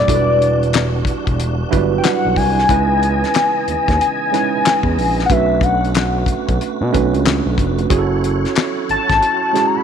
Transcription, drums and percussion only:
0.08 kick, closed hi-hat
0.42 closed hi-hat
0.63 closed hi-hat
0.73 snare, clap, closed hi-hat
1.05 kick, closed hi-hat
1.27 kick, closed hi-hat
1.40 closed hi-hat
1.73 kick, closed hi-hat
2.04 snare, clap, closed hi-hat
2.36 kick, open hi-hat
2.59 snare
2.69 kick, closed hi-hat
3.03 closed hi-hat
3.24 snare, closed hi-hat
3.34 snare, clap, closed hi-hat
3.68 closed hi-hat
3.88 kick, snare, closed hi-hat
4.01 closed hi-hat
4.34 snare, closed hi-hat
4.66 snare, clap, closed hi-hat
4.83 kick
4.99 open hi-hat
5.19 snare
5.30 kick, closed hi-hat
5.61 kick, closed hi-hat
5.85 closed hi-hat
5.95 snare, clap, closed hi-hat
6.26 kick, closed hi-hat
6.49 kick, closed hi-hat
6.61 closed hi-hat
6.94 kick, closed hi-hat
7.14 closed hi-hat
7.26 snare, clap, closed hi-hat
7.58 kick, closed hi-hat
7.79 closed hi-hat
7.90 kick, closed hi-hat
8.24 closed hi-hat
8.45 snare, closed hi-hat
8.55 snare, clap, closed hi-hat
8.89 closed hi-hat
9.10 kick, snare, closed hi-hat
9.22 closed hi-hat
9.56 snare, closed hi-hat

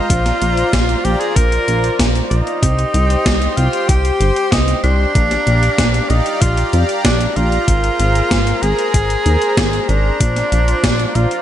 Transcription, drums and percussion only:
0.10 kick, closed hi-hat
0.26 snare, closed hi-hat
0.42 closed hi-hat
0.57 closed hi-hat
0.73 kick, snare, closed hi-hat
0.89 closed hi-hat
1.05 closed hi-hat
1.21 closed hi-hat
1.36 kick, closed hi-hat
1.52 closed hi-hat
1.68 closed hi-hat
1.84 closed hi-hat
1.99 kick, snare, closed hi-hat
2.15 closed hi-hat
2.31 closed hi-hat
2.47 closed hi-hat
2.63 kick, closed hi-hat
2.79 closed hi-hat
2.94 closed hi-hat
3.10 closed hi-hat
3.26 kick, snare, closed hi-hat
3.42 closed hi-hat
3.57 closed hi-hat
3.73 closed hi-hat
3.89 kick, closed hi-hat
4.05 closed hi-hat
4.21 closed hi-hat
4.36 closed hi-hat
4.52 kick, snare, closed hi-hat
4.68 closed hi-hat
4.84 closed hi-hat
5.15 kick, closed hi-hat
5.31 snare, closed hi-hat
5.47 closed hi-hat
5.63 closed hi-hat
5.78 kick, snare, closed hi-hat
5.94 closed hi-hat
6.10 closed hi-hat
6.26 closed hi-hat
6.42 kick, closed hi-hat
6.57 closed hi-hat
6.73 closed hi-hat
6.89 closed hi-hat
7.05 kick, snare, closed hi-hat
7.21 closed hi-hat
7.36 closed hi-hat
7.52 closed hi-hat
7.68 kick, closed hi-hat
7.84 closed hi-hat
8.00 closed hi-hat
8.15 closed hi-hat
8.31 kick, snare, closed hi-hat
8.47 closed hi-hat
8.63 closed hi-hat
8.79 closed hi-hat
8.94 kick, closed hi-hat
9.10 closed hi-hat
9.26 closed hi-hat
9.42 closed hi-hat
9.57 kick, snare, closed hi-hat
9.73 closed hi-hat
9.89 closed hi-hat
10.20 kick, closed hi-hat
10.36 snare, closed hi-hat
10.52 closed hi-hat
10.68 closed hi-hat
10.84 kick, snare, closed hi-hat
10.99 closed hi-hat
11.15 closed hi-hat
11.31 closed hi-hat

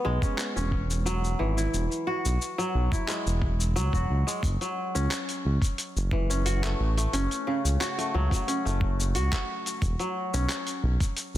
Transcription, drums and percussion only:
0.22 kick, cabasa
0.38 clap, cabasa
0.57 cabasa
0.72 kick
0.90 cabasa
1.07 cabasa
1.24 cabasa
1.58 cabasa
1.74 cabasa
1.92 cabasa
2.25 cabasa
2.42 cabasa
2.59 cabasa
2.92 kick, cabasa
3.08 clap, cabasa
3.27 cabasa
3.42 kick
3.60 cabasa
3.77 cabasa
3.93 kick, cabasa
4.28 cabasa
4.43 kick, closed hi-hat, cabasa
4.61 closed hi-hat, cabasa
4.96 cabasa
5.11 clap, closed hi-hat, cabasa
5.29 closed hi-hat, cabasa
5.62 kick, closed hi-hat, cabasa
5.78 closed hi-hat, cabasa
5.97 cabasa
6.11 kick
6.31 cabasa
6.46 closed hi-hat, cabasa
6.64 clap, closed hi-hat, cabasa
6.98 closed hi-hat, cabasa
7.13 closed hi-hat, cabasa
7.31 closed hi-hat, cabasa
7.65 cabasa
7.81 clap, closed hi-hat, cabasa
7.99 closed hi-hat, cabasa
8.31 kick, closed hi-hat, cabasa
8.48 closed hi-hat, cabasa
8.67 cabasa
8.81 kick
9.00 cabasa
9.15 closed hi-hat, cabasa
9.32 kick, clap, closed hi-hat, cabasa
9.66 closed hi-hat, cabasa
9.82 kick, closed hi-hat, cabasa
9.99 closed hi-hat, cabasa
10.34 cabasa
10.49 clap, closed hi-hat, cabasa
10.67 closed hi-hat, cabasa
11.00 kick, closed hi-hat, cabasa
11.17 closed hi-hat, cabasa

